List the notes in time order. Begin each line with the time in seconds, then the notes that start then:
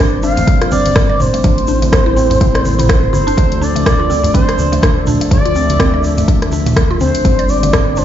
Already playing: G1 G3 C4 D4 C5 D5
0.00 D4
0.23 D4 F5, muted conga, shaker
0.37 A3, closed hi-hat, low conga, shaker
0.47 C2, kick, closed hi-hat, shaker
0.61 F4, cross-stick, closed hi-hat, muted conga
0.72 G1 C4 D5, high conga, shaker
0.86 closed hi-hat, high conga, shaker
0.96 C4, kick, cross-stick, closed hi-hat, mid tom, muted conga, low conga, shaker
1.09 D5
1.20 G1 C5, mid tom, high conga, shaker
1.34 A3, closed hi-hat, shaker
1.43 A1 D4 E4 A4 C5, kick, closed hi-hat, muted conga, high conga, low conga, shaker
1.58 closed hi-hat
1.67 D4, shaker
1.82 A3, closed hi-hat, muted conga, high conga, shaker
1.93 kick, cross-stick, closed hi-hat, shaker
2.06 E4
2.16 C4, muted conga, shaker
2.30 closed hi-hat, low conga, shaker
2.41 A1 C4, kick, closed hi-hat, shaker
2.55 D5, cross-stick, closed hi-hat, muted conga
2.65 high conga, shaker
2.79 E4, closed hi-hat, mid tom, high conga, shaker
2.89 C5, kick, cross-stick, closed hi-hat, muted conga, high conga
3.13 G1 E4 C5, high conga, shaker
3.27 D4, closed hi-hat, shaker
3.37 D2 F3 A3 D4 D5, kick, closed hi-hat, muted conga, high conga, low conga, shaker
3.52 closed hi-hat
3.62 D4 D5, shaker
3.76 A3, closed hi-hat, muted conga, high conga, shaker
3.86 kick, cross-stick, closed hi-hat, mid tom, shaker
4.00 F4
4.10 C4, muted conga, shaker
4.24 closed hi-hat, low conga, shaker
4.34 G2 C4 C5, kick, closed hi-hat, shaker
4.48 D5, cross-stick, closed hi-hat, muted conga
4.58 D2, high conga, shaker
4.72 A3, closed hi-hat, high conga, shaker
4.83 D4, kick, cross-stick, closed hi-hat, mid tom, muted conga, low conga, shaker
5.07 D2 D4, mid tom, high conga, shaker
5.21 A3, closed hi-hat, shaker
5.31 D2 D5 E5, kick, closed hi-hat, muted conga, high conga, low conga, shaker
5.45 F4, closed hi-hat
5.55 C4, shaker
5.69 closed hi-hat, muted conga, high conga, shaker
5.80 C4, kick, cross-stick, closed hi-hat, shaker
5.94 D5
6.04 muted conga, shaker
6.17 A3, closed hi-hat, low conga, shaker
6.28 D2 D4, kick, closed hi-hat, shaker
6.42 cross-stick, closed hi-hat, muted conga
6.51 D4, high conga, shaker
6.66 A3, closed hi-hat, mid tom, high conga, shaker
6.76 kick, cross-stick, closed hi-hat, muted conga, high conga, shaker
6.91 F4
7.00 D2 C4 C5, high conga, shaker
7.15 closed hi-hat, shaker
7.25 G1 G3 C4 C5 D5, kick, closed hi-hat, muted conga, high conga, low conga, shaker
7.39 D5, closed hi-hat
7.49 D5, shaker
7.63 A3, closed hi-hat, muted conga, high conga, shaker
7.73 D4, kick, cross-stick, closed hi-hat, mid tom, shaker
7.96 D4 C5, muted conga, shaker